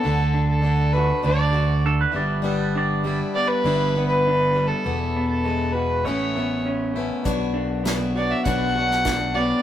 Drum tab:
HH |----------------|----------------|----------------|x---x---x---x---|
SD |----------------|----------------|----------------|----o------oo---|
BD |----------------|----------------|----------------|o-------o---o---|